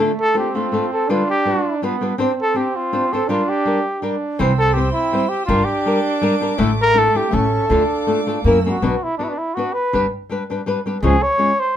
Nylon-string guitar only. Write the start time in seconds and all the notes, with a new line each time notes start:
0.00 A3 D4 F4 A4
0.34 A3 D4 F4 A4
0.55 A3 D4 F4 A4
0.72 A3 D4 F4 A4
1.09 D3 G3 D4 F4 B4
1.45 G3 D4 F4 B4
1.82 G3 D4 F4 B4
2.01 G3 D4 F4 B4
2.18 C4 D4 G4 C5
2.54 C4 D4 G4 C5
2.93 C4 D4 G4 C5
3.13 C4 D4 G4 C5
3.29 G3 D4 G4 A#4
3.65 G3 D4 G4 A#4
4.02 G3 D4 G4 A#4
4.39 C3 E3 G3 C4 E4 C5
4.75 G3 C4 E4 C5
5.12 G3 C4 E4 C5
5.49 G3 D4 G4 A#4
5.86 G3 D4 G4 A#4
6.22 G3 D4 G4 A#4
6.41 G3 D4 G4 A#4
6.58 A2 D3 A3 D4 E4 A4
6.94 A3 D4 E4 A4
7.15 A3 D4 E4 A4
7.31 A3 C#4 E4 A4
7.70 D3 A3 D4 F4 A4
8.07 A3 D4 F4 A4
8.27 A3 D4 F4 A4
8.46 A#3 C#4 E4 A#4
8.66 A#3 C#4 E4 A#4
8.82 B2 F#3 B3 D4 F#4 B4
9.19 B3 D4 F#4 B4
9.57 B3 D4 F#4 B4
9.93 G3 D4 G4 B4
10.29 G3 D4 G4 B4
10.50 G3 D4 G4 B4
10.66 G3 D4 G4 B4
10.86 G3 D4 G4 B4
11.03 C#3 F3 G#3 C#4 F4 C#5
11.38 G#3 C#4 F4 C#5